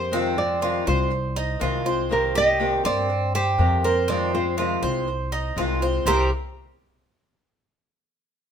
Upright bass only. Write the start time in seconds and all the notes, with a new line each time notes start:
Already playing: F2
0.87 C2
1.62 C2
2.85 G2
3.59 F2
4.82 C2
5.57 C2
6.06 C2